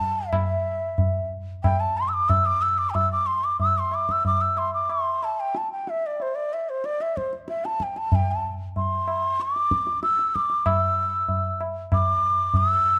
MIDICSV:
0, 0, Header, 1, 3, 480
1, 0, Start_track
1, 0, Tempo, 656455
1, 240, Time_signature, 4, 2, 24, 8
1, 2638, Tempo, 646552
1, 5038, Tempo, 633580
1, 9699, End_track
2, 0, Start_track
2, 0, Title_t, "Bansuri"
2, 0, Program_c, 0, 73
2, 0, Note_on_c, 0, 81, 88
2, 207, Note_on_c, 0, 76, 73
2, 218, Note_off_c, 0, 81, 0
2, 946, Note_off_c, 0, 76, 0
2, 1193, Note_on_c, 0, 79, 107
2, 1317, Note_on_c, 0, 81, 91
2, 1328, Note_off_c, 0, 79, 0
2, 1442, Note_on_c, 0, 84, 89
2, 1453, Note_off_c, 0, 81, 0
2, 1525, Note_on_c, 0, 88, 69
2, 1536, Note_off_c, 0, 84, 0
2, 1563, Note_on_c, 0, 86, 92
2, 1574, Note_off_c, 0, 88, 0
2, 1675, Note_on_c, 0, 88, 92
2, 1686, Note_off_c, 0, 86, 0
2, 1797, Note_on_c, 0, 86, 101
2, 1808, Note_off_c, 0, 88, 0
2, 1914, Note_on_c, 0, 88, 86
2, 1925, Note_off_c, 0, 86, 0
2, 2033, Note_on_c, 0, 86, 85
2, 2044, Note_off_c, 0, 88, 0
2, 2120, Note_on_c, 0, 79, 74
2, 2131, Note_off_c, 0, 86, 0
2, 2155, Note_on_c, 0, 88, 94
2, 2166, Note_off_c, 0, 79, 0
2, 2277, Note_off_c, 0, 88, 0
2, 2284, Note_on_c, 0, 86, 91
2, 2386, Note_on_c, 0, 84, 96
2, 2397, Note_off_c, 0, 86, 0
2, 2515, Note_on_c, 0, 86, 85
2, 2526, Note_off_c, 0, 84, 0
2, 2632, Note_off_c, 0, 86, 0
2, 2636, Note_on_c, 0, 88, 93
2, 2767, Note_on_c, 0, 84, 82
2, 2778, Note_off_c, 0, 88, 0
2, 2886, Note_on_c, 0, 86, 85
2, 2897, Note_off_c, 0, 84, 0
2, 3015, Note_on_c, 0, 88, 94
2, 3026, Note_off_c, 0, 86, 0
2, 3124, Note_off_c, 0, 88, 0
2, 3128, Note_on_c, 0, 86, 107
2, 3234, Note_on_c, 0, 88, 89
2, 3245, Note_off_c, 0, 86, 0
2, 3360, Note_on_c, 0, 84, 90
2, 3371, Note_off_c, 0, 88, 0
2, 3475, Note_off_c, 0, 84, 0
2, 3479, Note_on_c, 0, 86, 79
2, 3603, Note_on_c, 0, 84, 91
2, 3614, Note_off_c, 0, 86, 0
2, 3848, Note_on_c, 0, 81, 82
2, 3859, Note_off_c, 0, 84, 0
2, 3968, Note_on_c, 0, 79, 84
2, 3979, Note_off_c, 0, 81, 0
2, 4094, Note_on_c, 0, 81, 77
2, 4105, Note_off_c, 0, 79, 0
2, 4205, Note_off_c, 0, 81, 0
2, 4209, Note_on_c, 0, 79, 80
2, 4335, Note_on_c, 0, 76, 93
2, 4346, Note_off_c, 0, 79, 0
2, 4461, Note_on_c, 0, 74, 80
2, 4472, Note_off_c, 0, 76, 0
2, 4577, Note_on_c, 0, 72, 83
2, 4588, Note_off_c, 0, 74, 0
2, 4675, Note_on_c, 0, 74, 80
2, 4686, Note_off_c, 0, 72, 0
2, 4810, Note_on_c, 0, 76, 77
2, 4821, Note_off_c, 0, 74, 0
2, 4928, Note_on_c, 0, 72, 80
2, 4939, Note_off_c, 0, 76, 0
2, 5047, Note_on_c, 0, 74, 89
2, 5059, Note_off_c, 0, 72, 0
2, 5171, Note_on_c, 0, 76, 83
2, 5182, Note_off_c, 0, 74, 0
2, 5283, Note_on_c, 0, 72, 76
2, 5295, Note_off_c, 0, 76, 0
2, 5404, Note_off_c, 0, 72, 0
2, 5530, Note_on_c, 0, 76, 76
2, 5651, Note_on_c, 0, 81, 75
2, 5663, Note_off_c, 0, 76, 0
2, 5786, Note_on_c, 0, 79, 75
2, 5798, Note_off_c, 0, 81, 0
2, 5898, Note_on_c, 0, 81, 85
2, 5909, Note_off_c, 0, 79, 0
2, 6030, Note_on_c, 0, 79, 83
2, 6041, Note_off_c, 0, 81, 0
2, 6152, Note_on_c, 0, 81, 71
2, 6164, Note_off_c, 0, 79, 0
2, 6262, Note_off_c, 0, 81, 0
2, 6501, Note_on_c, 0, 84, 83
2, 6990, Note_on_c, 0, 86, 108
2, 7001, Note_off_c, 0, 84, 0
2, 7450, Note_off_c, 0, 86, 0
2, 7454, Note_on_c, 0, 88, 97
2, 7696, Note_on_c, 0, 86, 94
2, 7708, Note_off_c, 0, 88, 0
2, 7935, Note_on_c, 0, 88, 91
2, 7947, Note_off_c, 0, 86, 0
2, 8650, Note_off_c, 0, 88, 0
2, 8901, Note_on_c, 0, 86, 103
2, 9376, Note_on_c, 0, 88, 106
2, 9387, Note_off_c, 0, 86, 0
2, 9699, Note_off_c, 0, 88, 0
2, 9699, End_track
3, 0, Start_track
3, 0, Title_t, "Tabla"
3, 3, Note_on_c, 9, 64, 54
3, 76, Note_off_c, 9, 64, 0
3, 238, Note_on_c, 9, 60, 101
3, 238, Note_on_c, 9, 64, 87
3, 311, Note_off_c, 9, 60, 0
3, 311, Note_off_c, 9, 64, 0
3, 717, Note_on_c, 9, 63, 80
3, 717, Note_on_c, 9, 64, 65
3, 790, Note_off_c, 9, 63, 0
3, 790, Note_off_c, 9, 64, 0
3, 1201, Note_on_c, 9, 60, 75
3, 1201, Note_on_c, 9, 64, 69
3, 1274, Note_off_c, 9, 60, 0
3, 1274, Note_off_c, 9, 64, 0
3, 1678, Note_on_c, 9, 63, 75
3, 1678, Note_on_c, 9, 64, 65
3, 1751, Note_off_c, 9, 63, 0
3, 1751, Note_off_c, 9, 64, 0
3, 2156, Note_on_c, 9, 63, 80
3, 2156, Note_on_c, 9, 64, 67
3, 2229, Note_off_c, 9, 63, 0
3, 2229, Note_off_c, 9, 64, 0
3, 2629, Note_on_c, 9, 63, 73
3, 2629, Note_on_c, 9, 64, 64
3, 2703, Note_off_c, 9, 63, 0
3, 2703, Note_off_c, 9, 64, 0
3, 2866, Note_on_c, 9, 60, 58
3, 2940, Note_off_c, 9, 60, 0
3, 2995, Note_on_c, 9, 37, 57
3, 3069, Note_off_c, 9, 37, 0
3, 3113, Note_on_c, 9, 63, 75
3, 3113, Note_on_c, 9, 64, 68
3, 3187, Note_off_c, 9, 63, 0
3, 3187, Note_off_c, 9, 64, 0
3, 3351, Note_on_c, 9, 60, 60
3, 3426, Note_off_c, 9, 60, 0
3, 3593, Note_on_c, 9, 60, 69
3, 3667, Note_off_c, 9, 60, 0
3, 3839, Note_on_c, 9, 60, 56
3, 3913, Note_off_c, 9, 60, 0
3, 4077, Note_on_c, 9, 62, 79
3, 4151, Note_off_c, 9, 62, 0
3, 4320, Note_on_c, 9, 62, 59
3, 4394, Note_off_c, 9, 62, 0
3, 4562, Note_on_c, 9, 63, 73
3, 4636, Note_off_c, 9, 63, 0
3, 5037, Note_on_c, 9, 62, 70
3, 5113, Note_off_c, 9, 62, 0
3, 5161, Note_on_c, 9, 62, 54
3, 5237, Note_off_c, 9, 62, 0
3, 5289, Note_on_c, 9, 37, 56
3, 5365, Note_off_c, 9, 37, 0
3, 5408, Note_on_c, 9, 62, 55
3, 5484, Note_off_c, 9, 62, 0
3, 5521, Note_on_c, 9, 62, 68
3, 5597, Note_off_c, 9, 62, 0
3, 5652, Note_on_c, 9, 62, 58
3, 5727, Note_off_c, 9, 62, 0
3, 5765, Note_on_c, 9, 37, 61
3, 5841, Note_off_c, 9, 37, 0
3, 5887, Note_on_c, 9, 62, 64
3, 5963, Note_off_c, 9, 62, 0
3, 6006, Note_on_c, 9, 63, 76
3, 6006, Note_on_c, 9, 64, 78
3, 6082, Note_off_c, 9, 63, 0
3, 6082, Note_off_c, 9, 64, 0
3, 6493, Note_on_c, 9, 63, 74
3, 6493, Note_on_c, 9, 64, 63
3, 6569, Note_off_c, 9, 63, 0
3, 6569, Note_off_c, 9, 64, 0
3, 6731, Note_on_c, 9, 60, 60
3, 6807, Note_off_c, 9, 60, 0
3, 6974, Note_on_c, 9, 62, 70
3, 7050, Note_off_c, 9, 62, 0
3, 7098, Note_on_c, 9, 62, 57
3, 7174, Note_off_c, 9, 62, 0
3, 7214, Note_on_c, 9, 37, 68
3, 7290, Note_off_c, 9, 37, 0
3, 7332, Note_on_c, 9, 62, 57
3, 7408, Note_off_c, 9, 62, 0
3, 7453, Note_on_c, 9, 62, 79
3, 7528, Note_off_c, 9, 62, 0
3, 7576, Note_on_c, 9, 62, 60
3, 7652, Note_off_c, 9, 62, 0
3, 7701, Note_on_c, 9, 37, 59
3, 7777, Note_off_c, 9, 37, 0
3, 7807, Note_on_c, 9, 62, 57
3, 7883, Note_off_c, 9, 62, 0
3, 7930, Note_on_c, 9, 60, 94
3, 7930, Note_on_c, 9, 64, 89
3, 8006, Note_off_c, 9, 60, 0
3, 8006, Note_off_c, 9, 64, 0
3, 8405, Note_on_c, 9, 63, 79
3, 8405, Note_on_c, 9, 64, 63
3, 8480, Note_off_c, 9, 63, 0
3, 8480, Note_off_c, 9, 64, 0
3, 8648, Note_on_c, 9, 60, 58
3, 8724, Note_off_c, 9, 60, 0
3, 8884, Note_on_c, 9, 60, 66
3, 8884, Note_on_c, 9, 64, 62
3, 8960, Note_off_c, 9, 60, 0
3, 8960, Note_off_c, 9, 64, 0
3, 9353, Note_on_c, 9, 63, 65
3, 9353, Note_on_c, 9, 64, 65
3, 9429, Note_off_c, 9, 63, 0
3, 9429, Note_off_c, 9, 64, 0
3, 9699, End_track
0, 0, End_of_file